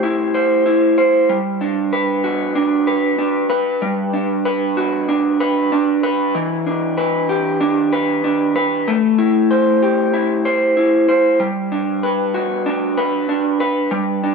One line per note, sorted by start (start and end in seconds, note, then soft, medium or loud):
0.00 1.29 A3 medium
0.00 0.65 E4 medium
0.00 2.24 G4 medium
0.00 0.33 C5 medium
0.34 0.97 C5 medium
0.66 1.37 E4 medium
0.98 1.37 C5 medium
1.29 3.81 G3 medium
1.61 2.55 D4 medium
1.93 2.87 B4 medium
2.24 4.76 F#4 medium
2.55 3.18 D4 medium
2.87 3.49 B4 medium
3.18 4.13 D4 medium
3.50 4.45 B4 medium
3.82 6.34 G3 medium
4.13 5.08 D4 medium
4.45 5.40 B4 medium
4.77 6.42 F#4 medium
5.09 5.72 D4 medium
5.40 6.03 B4 medium
5.72 6.66 D4 medium
6.03 6.97 B4 medium
6.35 9.85 E3 medium
6.67 7.59 D4 medium
6.97 7.91 B4 medium
7.29 9.82 G4 medium
7.61 8.23 D4 medium
7.93 8.54 B4 medium
8.24 8.95 D4 medium
8.56 8.95 B4 medium
8.88 11.40 A3 medium
9.18 10.12 E4 medium
9.51 10.44 C5 medium
9.82 12.34 G4 medium
10.14 10.76 E4 medium
10.45 11.07 C5 medium
10.77 11.47 E4 medium
11.09 11.48 C5 medium
11.40 13.91 G3 medium
11.72 12.66 D4 medium
12.03 12.97 B4 medium
12.34 14.35 F#4 medium
12.66 13.28 D4 medium
12.97 13.60 B4 medium
13.29 14.23 D4 medium
13.60 14.35 B4 medium
13.91 14.35 G3 medium
14.24 14.35 D4 medium